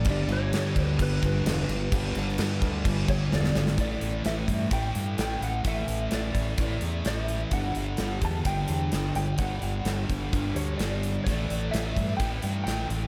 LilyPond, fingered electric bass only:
\new Staff \with { instrumentName = "Fingered electric bass" } { \clef bass \time 4/4 \key g \lydian \tempo 4 = 128 g,,8 g,,8 g,8 d,8 g,,8 g,,8 e,,8 g,,8 | g,,8 g,,8 g,8 d,8 g,,8 g,,8 e,,8 gis,,8 | a,,8 a,,8 a,,8 g,8 a,,8 g,8 a,,8 a,,8 | a,,8 a,,8 a,,8 a,,8 a,,8 e,8 a,,4 |
g,,8 g,,8 g,,8 e,8 g,,8 e,8 g,,8 g,,8 | g,,8 g,,8 g,,8 g,,8 g,,8 d,8 g,,4 | a,,8 a,,8 a,,8 g,8 a,,8 g,8 a,,8 a,,8 | }